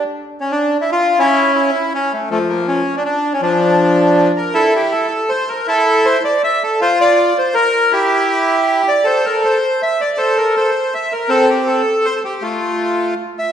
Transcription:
\new Staff \with { instrumentName = "Bandoneon" } { \time 3/4 \key d \minor \tempo 4 = 160 << { r4 cis'16 d'8. e'16 f'8. | e'4 e'4 cis'8 a8 | a8 bes8 cis'8. d'16 d'8. cis'16 | d'2~ d'8 bes'8 |
\key f \major a'8 g'8 a'4 c''8 bes'8 | a'4 c''8 d''8 e''8 a'8 | c''8 d''4 c''8 bes'4 | g'2~ g'8 d''8 |
c''8 bes'8 c''4 e''8 d''8 | c''8 bes'8 c''4 e''8 bes'8 | a'8 g'8 a'4 c''16. a'32 g'8 | f'2 r8 e''8 | } \\ { r2. | cis'4. r4. | f4. r4. | f2~ f8 r8 |
e'4. r4. | e'4. r4. | f'4. r4. | e'2~ e'8 r8 |
a'4. r4. | a'4. r4. | c'4. r4. | a2 r4 | } >> }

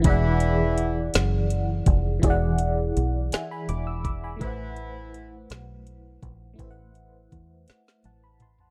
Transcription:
<<
  \new Staff \with { instrumentName = "FM electric piano" } { \time 6/8 \key a \dorian \tempo 4. = 55 << { r2. | r4. <e'' gis''>16 <gis'' b''>16 <b'' d'''>16 e'''16 <b'' d'''>16 <gis'' b''>16~ | <gis'' b''>16 r2 r8. | r2 <fis'' a''>16 b''16 <a'' c'''>16 <fis'' a''>16 | } \\ { <e e' gis' d'' fis''>2. | <e e' gis' d'' fis''>2. | <a e' b' c'' fis''>2. | <a e' b' c'' e'' fis''>2. | } >> }
  \new Staff \with { instrumentName = "Horn section" } { \time 6/8 \key a \dorian <e e'>4. r4. | r2. | <e e'>4. r4. | r2. | }
  \new Staff \with { instrumentName = "Fingered electric bass" } { \clef bass \time 6/8 \key a \dorian e,,4. fis,,4 f,,8 | e,,4 b,,8 r8 e,,4 | a,,4. b,,4 bes,,8 | a,,4 e,8 r8 a,,4 | }
  \new DrumStaff \with { instrumentName = "Drums" } \drummode { \time 6/8 <hh bd>8 hh8 hh8 <hh sn>8 hh8 <hh bd>8 | <hh bd>8 hh8 hh8 <hh sn>8 hh8 <hh bd>8 | <hh bd>8 hh8 hh8 <hh sn>8 hh8 <hh bd>8 | <hh bd>8 hh8 <hh bd>8 <hh sn>16 sn16 <hh tommh>8 <hh toml>16 tomfh16 | }
>>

